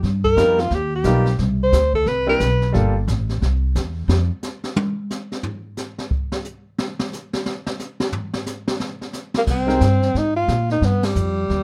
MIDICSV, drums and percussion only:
0, 0, Header, 1, 2, 480
1, 0, Start_track
1, 0, Tempo, 336889
1, 43, Time_signature, 4, 2, 24, 8
1, 16573, End_track
2, 0, Start_track
2, 0, Title_t, "Drums"
2, 45, Note_on_c, 9, 36, 19
2, 48, Note_on_c, 9, 25, 41
2, 48, Note_on_c, 9, 38, 41
2, 188, Note_off_c, 9, 36, 0
2, 191, Note_off_c, 9, 38, 0
2, 352, Note_on_c, 9, 36, 53
2, 495, Note_off_c, 9, 36, 0
2, 528, Note_on_c, 9, 36, 23
2, 529, Note_on_c, 9, 44, 52
2, 531, Note_on_c, 9, 38, 60
2, 670, Note_off_c, 9, 36, 0
2, 672, Note_off_c, 9, 44, 0
2, 673, Note_off_c, 9, 38, 0
2, 827, Note_on_c, 9, 38, 38
2, 970, Note_off_c, 9, 38, 0
2, 1001, Note_off_c, 9, 25, 0
2, 1001, Note_on_c, 9, 25, 42
2, 1001, Note_on_c, 9, 38, 40
2, 1008, Note_on_c, 9, 36, 23
2, 1143, Note_off_c, 9, 38, 0
2, 1151, Note_off_c, 9, 36, 0
2, 1478, Note_on_c, 9, 44, 48
2, 1479, Note_on_c, 9, 38, 60
2, 1489, Note_on_c, 9, 36, 22
2, 1620, Note_off_c, 9, 44, 0
2, 1621, Note_off_c, 9, 38, 0
2, 1632, Note_off_c, 9, 36, 0
2, 1791, Note_on_c, 9, 38, 46
2, 1934, Note_off_c, 9, 38, 0
2, 1973, Note_off_c, 9, 25, 0
2, 1973, Note_on_c, 9, 25, 42
2, 1973, Note_on_c, 9, 38, 43
2, 1975, Note_on_c, 9, 36, 21
2, 2115, Note_off_c, 9, 38, 0
2, 2117, Note_off_c, 9, 36, 0
2, 2456, Note_on_c, 9, 36, 20
2, 2459, Note_on_c, 9, 44, 66
2, 2460, Note_on_c, 9, 38, 60
2, 2599, Note_off_c, 9, 36, 0
2, 2601, Note_off_c, 9, 44, 0
2, 2603, Note_off_c, 9, 38, 0
2, 2759, Note_on_c, 9, 36, 50
2, 2902, Note_off_c, 9, 36, 0
2, 2938, Note_off_c, 9, 25, 0
2, 2938, Note_on_c, 9, 25, 41
2, 2938, Note_on_c, 9, 38, 43
2, 2939, Note_on_c, 9, 36, 24
2, 3080, Note_off_c, 9, 38, 0
2, 3081, Note_off_c, 9, 36, 0
2, 3417, Note_on_c, 9, 44, 57
2, 3418, Note_on_c, 9, 38, 57
2, 3420, Note_on_c, 9, 36, 20
2, 3559, Note_off_c, 9, 44, 0
2, 3560, Note_off_c, 9, 38, 0
2, 3563, Note_off_c, 9, 36, 0
2, 3727, Note_on_c, 9, 38, 39
2, 3870, Note_off_c, 9, 38, 0
2, 3904, Note_off_c, 9, 25, 0
2, 3904, Note_on_c, 9, 25, 42
2, 3904, Note_on_c, 9, 36, 21
2, 3904, Note_on_c, 9, 38, 43
2, 4046, Note_off_c, 9, 36, 0
2, 4046, Note_off_c, 9, 38, 0
2, 4385, Note_on_c, 9, 36, 19
2, 4387, Note_on_c, 9, 44, 54
2, 4388, Note_on_c, 9, 38, 61
2, 4527, Note_off_c, 9, 36, 0
2, 4529, Note_off_c, 9, 44, 0
2, 4530, Note_off_c, 9, 38, 0
2, 4690, Note_on_c, 9, 38, 37
2, 4833, Note_off_c, 9, 38, 0
2, 4867, Note_on_c, 9, 36, 21
2, 4873, Note_off_c, 9, 25, 0
2, 4873, Note_on_c, 9, 25, 48
2, 4873, Note_on_c, 9, 38, 43
2, 5010, Note_off_c, 9, 36, 0
2, 5015, Note_off_c, 9, 38, 0
2, 5346, Note_on_c, 9, 36, 20
2, 5348, Note_on_c, 9, 44, 58
2, 5350, Note_on_c, 9, 38, 61
2, 5488, Note_off_c, 9, 36, 0
2, 5491, Note_off_c, 9, 44, 0
2, 5492, Note_off_c, 9, 38, 0
2, 5830, Note_on_c, 9, 38, 94
2, 5972, Note_off_c, 9, 38, 0
2, 6205, Note_off_c, 9, 25, 0
2, 6308, Note_on_c, 9, 44, 54
2, 6310, Note_on_c, 9, 38, 42
2, 6451, Note_off_c, 9, 44, 0
2, 6452, Note_off_c, 9, 38, 0
2, 6606, Note_on_c, 9, 38, 51
2, 6748, Note_off_c, 9, 38, 0
2, 6787, Note_on_c, 9, 48, 96
2, 6930, Note_off_c, 9, 48, 0
2, 7272, Note_on_c, 9, 44, 54
2, 7273, Note_on_c, 9, 38, 49
2, 7414, Note_off_c, 9, 44, 0
2, 7416, Note_off_c, 9, 38, 0
2, 7576, Note_on_c, 9, 38, 47
2, 7718, Note_off_c, 9, 38, 0
2, 7739, Note_on_c, 9, 43, 90
2, 7882, Note_off_c, 9, 43, 0
2, 8222, Note_on_c, 9, 44, 57
2, 8223, Note_on_c, 9, 38, 54
2, 8364, Note_off_c, 9, 44, 0
2, 8366, Note_off_c, 9, 38, 0
2, 8526, Note_on_c, 9, 38, 54
2, 8669, Note_off_c, 9, 38, 0
2, 8705, Note_on_c, 9, 36, 73
2, 8847, Note_off_c, 9, 36, 0
2, 9004, Note_on_c, 9, 38, 93
2, 9146, Note_off_c, 9, 38, 0
2, 9183, Note_on_c, 9, 44, 55
2, 9325, Note_off_c, 9, 44, 0
2, 9666, Note_on_c, 9, 38, 99
2, 9808, Note_off_c, 9, 38, 0
2, 9966, Note_on_c, 9, 38, 102
2, 10108, Note_off_c, 9, 38, 0
2, 10156, Note_on_c, 9, 44, 61
2, 10157, Note_on_c, 9, 38, 38
2, 10298, Note_off_c, 9, 44, 0
2, 10299, Note_off_c, 9, 38, 0
2, 10449, Note_on_c, 9, 38, 91
2, 10591, Note_off_c, 9, 38, 0
2, 10627, Note_on_c, 9, 38, 93
2, 10769, Note_off_c, 9, 38, 0
2, 10921, Note_on_c, 9, 38, 96
2, 11064, Note_off_c, 9, 38, 0
2, 11104, Note_on_c, 9, 44, 59
2, 11105, Note_on_c, 9, 38, 44
2, 11246, Note_off_c, 9, 44, 0
2, 11248, Note_off_c, 9, 38, 0
2, 11398, Note_on_c, 9, 38, 98
2, 11540, Note_off_c, 9, 38, 0
2, 11574, Note_on_c, 9, 43, 92
2, 11717, Note_off_c, 9, 43, 0
2, 11876, Note_on_c, 9, 38, 96
2, 12019, Note_off_c, 9, 38, 0
2, 12057, Note_on_c, 9, 44, 60
2, 12058, Note_on_c, 9, 38, 57
2, 12199, Note_off_c, 9, 44, 0
2, 12201, Note_off_c, 9, 38, 0
2, 12361, Note_on_c, 9, 38, 95
2, 12504, Note_off_c, 9, 38, 0
2, 12536, Note_on_c, 9, 38, 89
2, 12678, Note_off_c, 9, 38, 0
2, 12843, Note_on_c, 9, 38, 41
2, 12986, Note_off_c, 9, 38, 0
2, 13010, Note_on_c, 9, 44, 56
2, 13011, Note_on_c, 9, 38, 52
2, 13152, Note_off_c, 9, 44, 0
2, 13153, Note_off_c, 9, 38, 0
2, 13311, Note_on_c, 9, 38, 98
2, 13454, Note_off_c, 9, 38, 0
2, 13494, Note_on_c, 9, 25, 40
2, 13494, Note_on_c, 9, 36, 64
2, 13494, Note_on_c, 9, 38, 39
2, 13494, Note_on_c, 9, 49, 68
2, 13636, Note_off_c, 9, 36, 0
2, 13636, Note_off_c, 9, 38, 0
2, 13636, Note_off_c, 9, 49, 0
2, 13801, Note_on_c, 9, 38, 35
2, 13944, Note_off_c, 9, 38, 0
2, 13972, Note_on_c, 9, 36, 23
2, 13972, Note_on_c, 9, 44, 58
2, 13973, Note_on_c, 9, 38, 59
2, 14115, Note_off_c, 9, 36, 0
2, 14115, Note_off_c, 9, 44, 0
2, 14116, Note_off_c, 9, 38, 0
2, 14277, Note_on_c, 9, 38, 35
2, 14419, Note_off_c, 9, 38, 0
2, 14455, Note_on_c, 9, 36, 17
2, 14460, Note_off_c, 9, 25, 0
2, 14460, Note_on_c, 9, 25, 47
2, 14460, Note_on_c, 9, 38, 37
2, 14597, Note_off_c, 9, 36, 0
2, 14603, Note_off_c, 9, 38, 0
2, 14932, Note_on_c, 9, 36, 20
2, 14935, Note_on_c, 9, 44, 47
2, 14936, Note_on_c, 9, 38, 56
2, 15074, Note_off_c, 9, 36, 0
2, 15077, Note_off_c, 9, 44, 0
2, 15079, Note_off_c, 9, 38, 0
2, 15240, Note_on_c, 9, 38, 37
2, 15383, Note_off_c, 9, 38, 0
2, 15410, Note_on_c, 9, 36, 23
2, 15416, Note_off_c, 9, 25, 0
2, 15416, Note_on_c, 9, 25, 41
2, 15416, Note_on_c, 9, 38, 41
2, 15552, Note_off_c, 9, 36, 0
2, 15558, Note_off_c, 9, 38, 0
2, 15715, Note_on_c, 9, 51, 65
2, 15716, Note_on_c, 9, 38, 77
2, 15857, Note_off_c, 9, 51, 0
2, 15859, Note_off_c, 9, 38, 0
2, 15891, Note_on_c, 9, 44, 60
2, 16033, Note_off_c, 9, 44, 0
2, 16373, Note_on_c, 9, 36, 24
2, 16379, Note_off_c, 9, 25, 0
2, 16379, Note_on_c, 9, 25, 40
2, 16379, Note_on_c, 9, 38, 39
2, 16516, Note_off_c, 9, 36, 0
2, 16521, Note_off_c, 9, 38, 0
2, 16573, Note_off_c, 9, 25, 0
2, 16573, End_track
0, 0, End_of_file